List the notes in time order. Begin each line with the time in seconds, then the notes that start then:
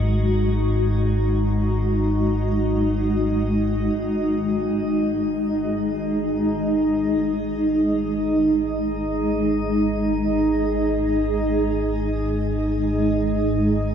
Already playing: G#1 G#2 G#3 D#4 F#4 D#5
3.93 G#1 G#2
4.77 G#4